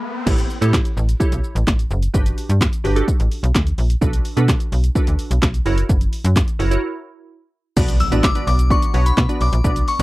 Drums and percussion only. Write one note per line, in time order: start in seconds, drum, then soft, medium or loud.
0.27 kick loud
0.27 crash medium
0.27 shaker medium
0.38 closed hi-hat medium
0.38 shaker medium
0.50 shaker soft
0.62 closed hi-hat medium
0.62 shaker medium
0.73 kick loud
0.73 snare medium
0.73 clap loud
0.73 shaker medium
0.85 closed hi-hat medium
0.85 shaker medium
0.97 shaker medium
1.09 closed hi-hat medium
1.09 shaker medium
1.20 kick loud
1.20 shaker medium
1.32 closed hi-hat medium
1.32 shaker medium
1.44 shaker soft
1.56 closed hi-hat medium
1.56 shaker medium
1.67 kick loud
1.67 snare medium
1.67 clap loud
1.67 shaker medium
1.79 closed hi-hat medium
1.79 shaker medium
1.91 shaker medium
2.03 closed hi-hat medium
2.03 shaker medium
2.14 kick loud
2.14 shaker medium
2.26 closed hi-hat soft
2.26 shaker soft
2.38 open hi-hat medium
2.38 shaker medium
2.50 closed hi-hat medium
2.50 shaker medium
2.61 kick loud
2.61 snare medium
2.61 clap loud
2.61 shaker medium
2.73 closed hi-hat soft
2.73 shaker medium
2.85 open hi-hat medium
2.85 shaker medium
2.96 closed hi-hat medium
2.96 shaker medium
3.08 kick loud
3.08 shaker medium
3.20 closed hi-hat medium
3.20 shaker medium
3.31 open hi-hat medium
3.31 shaker soft
3.44 closed hi-hat medium
3.44 shaker medium
3.55 kick loud
3.55 snare medium
3.55 clap loud
3.55 shaker medium
3.67 closed hi-hat medium
3.67 shaker medium
3.78 open hi-hat medium
3.78 shaker medium
3.90 closed hi-hat medium
3.90 shaker medium
4.02 kick loud
4.02 shaker medium
4.13 closed hi-hat medium
4.13 shaker medium
4.25 open hi-hat medium
4.25 shaker soft
4.37 closed hi-hat medium
4.37 shaker medium
4.48 kick loud
4.48 snare medium
4.48 clap loud
4.48 shaker medium
4.60 closed hi-hat medium
4.60 shaker medium
4.72 open hi-hat medium
4.72 shaker medium
4.84 closed hi-hat medium
4.84 shaker medium
4.95 kick loud
4.95 shaker medium
5.07 closed hi-hat medium
5.07 shaker medium
5.19 open hi-hat medium
5.19 shaker soft
5.31 closed hi-hat medium
5.31 shaker medium
5.42 kick loud
5.42 snare medium
5.42 clap loud
5.42 shaker medium
5.54 closed hi-hat medium
5.54 shaker medium
5.66 open hi-hat medium
5.66 shaker medium
5.78 closed hi-hat medium
5.78 shaker medium
5.89 kick loud
5.89 shaker medium
6.01 closed hi-hat medium
6.01 shaker medium
6.13 open hi-hat medium
6.13 shaker medium
6.25 closed hi-hat medium
6.25 shaker medium
6.36 kick loud
6.36 snare medium
6.36 clap loud
6.36 shaker medium
6.48 closed hi-hat medium
6.48 shaker medium
6.60 open hi-hat medium
6.60 shaker medium
6.71 closed hi-hat medium
6.71 shaker medium
7.77 kick loud
7.77 crash loud
7.77 shaker medium
7.88 closed hi-hat medium
7.88 shaker medium
8.00 open hi-hat medium
8.00 shaker medium
8.12 closed hi-hat medium
8.12 shaker medium
8.23 kick loud
8.23 snare medium
8.23 clap loud
8.23 shaker medium
8.35 closed hi-hat medium
8.35 shaker medium
8.47 open hi-hat medium
8.47 shaker medium
8.59 closed hi-hat medium
8.59 shaker medium
8.70 kick loud
8.70 shaker medium
8.82 closed hi-hat medium
8.82 shaker medium
8.94 open hi-hat medium
8.94 shaker soft
9.06 closed hi-hat medium
9.06 shaker medium
9.18 kick loud
9.18 snare medium
9.18 clap loud
9.18 shaker medium
9.29 closed hi-hat medium
9.29 shaker medium
9.41 open hi-hat medium
9.41 shaker medium
9.53 closed hi-hat medium
9.53 shaker medium
9.64 kick loud
9.64 shaker medium
9.76 closed hi-hat medium
9.76 shaker medium
9.88 open hi-hat medium
9.88 shaker medium
10.00 closed hi-hat medium
10.00 shaker medium